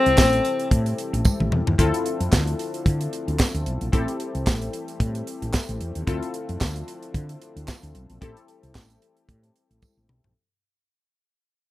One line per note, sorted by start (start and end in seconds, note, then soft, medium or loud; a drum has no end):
0.00 1.76 C3 medium
0.00 1.76 E3 medium
0.00 1.76 G3 medium
0.00 1.75 A3 medium
0.00 1.26 C4 loud
0.00 1.74 C4 medium
0.00 1.75 E4 medium
0.00 1.76 E4 medium
0.00 1.75 G4 medium
0.00 1.75 A4 medium
0.06 0.15 C2 medium
0.06 closed hi-hat medium
0.18 0.39 A1 loud
0.18 kick loud
0.18 snare loud
0.18 clap medium
0.18 tambourine loud
0.33 closed hi-hat soft
0.45 closed hi-hat medium
0.59 closed hi-hat soft
0.71 0.92 A2 medium
0.71 kick loud
0.71 closed hi-hat medium
0.86 closed hi-hat medium
0.98 closed hi-hat medium
1.13 1.22 A1 loud
1.13 closed hi-hat medium
1.25 kick loud
1.25 high tom medium
1.25 tambourine loud
1.40 1.49 A1 medium
1.40 mid tom medium
1.52 1.63 E2 loud
1.52 mid tom loud
1.67 1.76 D#2 medium
1.67 floor tom medium
1.78 1.90 D2 loud
1.78 3.91 D3 medium
1.78 3.91 F3 medium
1.78 8.18 A3 medium
1.78 3.89 C4 medium
1.78 3.91 C4 medium
1.78 3.91 D4 medium
1.78 3.89 E4 medium
1.78 3.89 F4 medium
1.78 3.90 A4 loud
1.78 kick loud
1.78 closed hi-hat medium
1.94 closed hi-hat medium
2.06 closed hi-hat medium
2.20 2.30 F2 medium
2.20 closed hi-hat medium
2.32 2.53 D2 medium
2.32 kick loud
2.32 snare loud
2.32 clap medium
2.32 tambourine loud
2.47 closed hi-hat soft
2.59 closed hi-hat medium
2.74 closed hi-hat soft
2.86 3.06 D3 loud
2.86 kick loud
2.86 closed hi-hat medium
3.01 closed hi-hat medium
3.13 closed hi-hat medium
3.28 3.37 D2 medium
3.28 closed hi-hat medium
3.39 kick loud
3.39 snare loud
3.39 clap medium
3.39 tambourine medium
3.54 3.63 D2 medium
3.54 closed hi-hat medium
3.66 3.78 B1 loud
3.66 closed hi-hat medium
3.81 3.90 A#1 medium
3.81 closed hi-hat medium
3.92 4.05 A1 loud
3.92 6.05 E3 medium
3.92 6.05 G3 medium
3.92 6.03 C4 medium
3.92 10.32 C4 medium
3.92 6.03 E4 medium
3.92 6.05 G4 medium
3.92 6.04 G4 medium
3.92 6.04 A4 medium
3.92 kick loud
3.92 closed hi-hat loud
4.08 closed hi-hat medium
4.20 closed hi-hat medium
4.35 4.44 C2 medium
4.35 closed hi-hat medium
4.47 4.67 A1 medium
4.47 kick loud
4.47 snare loud
4.47 clap medium
4.47 tambourine medium
4.62 closed hi-hat soft
4.73 closed hi-hat medium
4.88 closed hi-hat medium
5.00 5.21 A2 loud
5.00 kick loud
5.00 closed hi-hat medium
5.15 closed hi-hat medium
5.27 closed hi-hat medium
5.42 5.51 A1 loud
5.42 closed hi-hat medium
5.53 kick loud
5.53 snare loud
5.53 clap medium
5.53 tambourine loud
5.69 5.78 A1 loud
5.69 closed hi-hat medium
5.81 5.92 E2 medium
5.81 closed hi-hat medium
5.95 6.05 D#2 medium
5.95 closed hi-hat medium
6.07 6.19 D2 loud
6.07 8.20 D3 medium
6.07 8.20 F3 medium
6.07 8.17 C4 medium
6.07 8.20 D4 medium
6.07 8.18 E4 medium
6.07 8.18 F4 medium
6.07 8.18 A4 medium
6.07 kick loud
6.07 closed hi-hat loud
6.23 closed hi-hat medium
6.34 closed hi-hat medium
6.49 6.58 F2 medium
6.49 closed hi-hat medium
6.61 6.82 D2 medium
6.61 kick loud
6.61 snare loud
6.61 clap medium
6.61 tambourine medium
6.76 closed hi-hat soft
6.88 closed hi-hat medium
7.03 closed hi-hat soft
7.14 7.35 D3 loud
7.14 kick loud
7.14 closed hi-hat medium
7.29 closed hi-hat medium
7.42 closed hi-hat medium
7.56 7.65 D2 medium
7.56 closed hi-hat medium
7.68 kick loud
7.68 snare loud
7.68 clap medium
7.68 tambourine loud
7.83 7.92 D2 medium
7.83 closed hi-hat medium
7.95 8.06 B1 loud
7.95 closed hi-hat medium
8.10 8.19 A#1 medium
8.10 closed hi-hat medium
8.21 8.33 A1 loud
8.21 10.34 E3 medium
8.21 10.34 G3 medium
8.21 10.34 A3 medium
8.21 10.32 C4 medium
8.21 10.32 E4 medium
8.21 10.32 G4 medium
8.21 10.34 G4 medium
8.21 10.32 A4 medium
8.21 kick loud
8.21 closed hi-hat medium
8.37 closed hi-hat medium
8.48 closed hi-hat medium
8.63 8.75 C2 medium
8.63 closed hi-hat medium
8.75 8.96 A1 medium
8.75 kick loud
8.75 snare loud
8.75 clap medium
8.75 tambourine loud
8.90 closed hi-hat soft
9.02 closed hi-hat medium
9.17 closed hi-hat soft
9.29 9.49 A2 loud
9.29 kick loud
9.29 closed hi-hat medium
9.43 closed hi-hat medium
9.56 closed hi-hat medium
9.71 9.80 A1 medium
9.71 closed hi-hat medium
9.82 kick loud
9.82 high tom medium
9.82 tambourine loud
9.97 10.06 A1 medium
10.09 10.21 B1 medium
10.09 mid tom medium
10.24 10.33 A#1 medium
10.24 floor tom medium